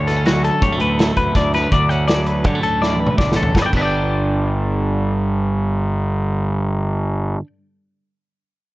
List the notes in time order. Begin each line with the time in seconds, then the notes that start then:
Already playing: D2 D3 E4
0.07 B3 A4, snare, closed hi-hat
0.17 C#4
0.26 F#3 F#4, snare, closed hi-hat
0.44 A4, closed hi-hat
0.62 D2 G3 C#5, kick, closed hi-hat
0.72 A3
0.80 D2 A2 B4, closed hi-hat
0.99 E4 A4, snare, closed hi-hat
1.17 D2 B4, kick, closed hi-hat
1.35 D2 D3 D5, kick, snare, closed hi-hat
1.54 B3 B4, snare, closed hi-hat
1.64 C#4
1.72 D2 D3 D5, kick, closed hi-hat
1.89 C#4 F#5, closed hi-hat
2.08 F#3 D5, snare, closed hi-hat
2.26 B4, closed hi-hat
2.44 D3 G3 C#5, kick, closed hi-hat
2.55 A3
2.63 D2 A2 A4, closed hi-hat
2.82 E4 D5, snare
2.94 high tom
3.00 B4
3.06 mid tom
3.18 B1 D3 D5, kick, snare
3.32 snare
3.36 A1 C#4 A4
3.43 floor tom
3.55 G1 G2 D3 B4, kick, snare
3.59 B3 D4 D5
3.63 F#4 G5
3.73 G1 G2 D3, kick, crash
3.77 B3 D4 B4
3.81 D5 G5